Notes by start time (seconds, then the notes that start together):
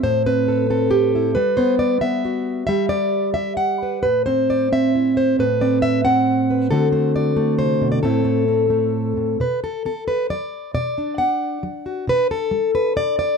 Already playing: E5
0.03 A2 C5
0.26 C4 B4
0.48 A4
0.70 C4 A4
0.91 G4
1.15 E4
1.35 G3 B4
1.57 B3 C5
1.79 D5
2.01 B3 E5
2.25 F#4
2.67 G3 E5
2.89 G4 D5
3.34 G4 E5
3.57 F#5
3.83 B4
4.03 A2 B4
4.26 C4 C5
4.50 D5
4.72 C4 E5
4.95 E4
5.17 C5
5.39 A2 B4
5.61 C4 D5
5.82 E5
6.05 C4 F#5
6.50 B4
6.71 D3 A3 C4 F#4 A4
6.92 A3 C5
7.16 D5
7.36 A3
7.59 C3 C5
7.81 B2
7.92 D5
8.03 A2 A3 C4 E4 A4
8.25 A3
8.48 C4
8.70 A3
9.17 A2
9.40 B2 B4
9.64 A4
9.85 B3 A4
10.08 B4
10.30 F#3 D5
10.74 B2 D5
10.98 D4
11.18 B3 F#5
11.63 F#3
11.86 F#4
12.07 B2 B4
12.31 A4
12.51 G3
12.75 B4
12.96 B2 D5
13.19 D5